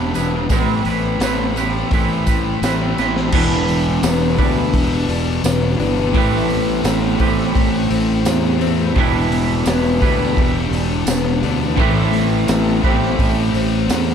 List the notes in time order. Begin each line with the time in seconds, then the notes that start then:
Already playing: E1 E2 B2 E3 G3 B3 D4 E4 G4 B4
0.13 B2 E3 B3 E4 B4, open hi-hat, tambourine
0.17 E1 D4
0.47 A1 A2 E3 G3 A3, kick, open hi-hat, tambourine
0.51 E3 C4 E4 B4
0.84 A1 E3 A3 C4 E4 B4, open hi-hat, tambourine
0.88 G3
1.19 A1 A2 E3 G3 A3 C4 E4 G4, snare, open hi-hat, tambourine
1.24 B4
1.54 E3 A3 B4, open hi-hat, tambourine
1.59 G3 C4 E4
1.91 A1 A2 E3 G3 A3 C4 E4 B4, kick, open hi-hat, tambourine
2.26 E3 G3 A3 C4 E4 B4, kick, open hi-hat, tambourine
2.60 A1 A2 E3 G3 A3 C4, snare, open hi-hat, tambourine
2.64 E4 B4
2.96 A1 E3 A3 C4 E4 B4, snare, tambourine
3.01 G3
3.17 snare
3.31 E1 E2 B2 E3 G3 D4 E4 B4, kick, crash
3.67 B2 E3, open hi-hat
4.02 E1 E2 B2 E3 B3, snare, open hi-hat, tambourine
4.37 D2 B2 E3 G3 D4 E4 B4, kick, open hi-hat
4.42 E3
4.73 E1 G4, kick, open hi-hat
5.08 E1 D4, open hi-hat
5.42 E1 E2 B2 E3 B3, snare, open hi-hat, tambourine
5.78 G1 B2 E3 D4, open hi-hat
6.13 A1 A2 E3 G3 A3 C4, kick, open hi-hat
6.17 G4 B4
6.48 E3 A3, snare, open hi-hat
6.83 A1 A2 E3 A3, snare, open hi-hat, tambourine
7.18 A1 E3 A3 C4 G4 B4, kick, open hi-hat
7.22 A2 E3 G3 C4
7.39 snare
7.55 A1 G4, kick, open hi-hat
7.90 A1 C4, open hi-hat
8.23 E2 A2 E3 A3, snare, open hi-hat, tambourine
8.58 E3 A3 C4, open hi-hat
8.93 E1 E2 B2 E3, kick, open hi-hat
8.97 E3 G3 D4 E4 B4
9.30 B2 E3, snare, open hi-hat
9.65 E1 E2 B2 E3 B3, snare, open hi-hat, tambourine
10.00 D2 B2 E3 D4 E4 B4, kick, open hi-hat
10.04 E3 G3
10.37 E1 G4, kick, open hi-hat
10.71 E1 D4, open hi-hat
11.05 E1 E2 B2 E3 B3, snare, open hi-hat, tambourine
11.41 D2 B2 E3 D4, open hi-hat
11.76 A1 A2 E3 G3 A3 C4 G4, kick, open hi-hat
11.81 B4
12.12 E3 A3, snare, open hi-hat
12.47 A1 A2 E3 A3, snare, open hi-hat, tambourine
12.82 A1 E3 A3 C4 G4 B4, kick, open hi-hat
12.86 A2 E3 G3
13.03 snare
13.19 A1 G4, kick, open hi-hat
13.54 A1 C4, open hi-hat
13.87 E2 A2 E3 A3, snare, open hi-hat, tambourine